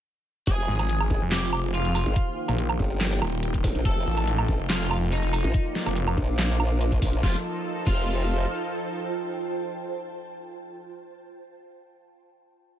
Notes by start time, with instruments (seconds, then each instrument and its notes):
0.47 wobble bass F1, analog synth pad F3 C4 G#4, ambient pad F4, clean electric guitar G#4, kick, closed hi-hat
0.57 ambient pad G#5
0.66 detuned saw bass G#1, ambient pad C5
0.79 closed hi-hat, low woodblock
0.89 closed hi-hat
1.00 low woodblock
1.10 wobble bass G#1, kick
1.22 detuned saw bass F1
1.32 clean electric guitar G4, snare, clap, closed hi-hat
1.53 low woodblock
1.74 clean electric guitar F4, closed hi-hat
1.85 detuned saw bass F1, closed hi-hat
1.95 open hi-hat, low woodblock
2.06 wobble bass G#1, closed hi-hat
2.16 analog synth pad D#3 A#3 G4, ambient pad D#4, kick, closed hi-hat
2.34 ambient pad A#4 G5
2.48 detuned saw bass A#1, closed hi-hat, low woodblock
2.58 closed hi-hat
2.69 low woodblock
2.75 ambient pad F5
2.79 wobble bass G1, kick
3.01 snare, clap, closed hi-hat
3.22 detuned saw bass D#1, low woodblock
3.43 closed hi-hat
3.54 kick, closed hi-hat
3.64 wobble bass D#1, kick, open hi-hat, zap
3.75 wobble bass A#1, closed hi-hat
3.85 wobble bass F1, analog synth pad F3 D#4 A4, ambient pad F4, clean electric guitar A4, kick, closed hi-hat
4.04 detuned saw bass A1, ambient pad C5
4.17 closed hi-hat, low woodblock
4.27 closed hi-hat
4.39 low woodblock
4.49 wobble bass A1, kick
4.53 ambient pad A5
4.60 detuned saw bass F1
4.70 clean electric guitar F4, snare, clap, closed hi-hat
4.91 low woodblock
5.12 clean electric guitar D#4, closed hi-hat
5.23 detuned saw bass F1, closed hi-hat
5.33 open hi-hat, low woodblock
5.44 wobble bass A1, closed hi-hat
5.54 analog synth pad A#3 F4 D5, ambient pad A#4, kick, closed hi-hat
5.71 ambient pad F5 C6
5.75 snare
5.86 detuned saw bass F1, closed hi-hat, low woodblock
5.96 closed hi-hat
6.06 ambient pad D6, low woodblock
6.18 wobble bass A#1, kick
6.39 snare, clap, closed hi-hat
6.60 low woodblock
6.81 closed hi-hat
6.92 kick, closed hi-hat
7.02 wobble bass A#1, kick, open hi-hat
7.13 closed hi-hat
7.23 wobble bass F1, analog synth pad F3 D#4 A4, clean electric guitar F4, ambient pad F4, kick, snare
7.30 ambient pad C5
7.36 ambient pad G5
7.42 ambient pad A5
7.87 wobble bass F1, clean electric guitar F4, kick, crash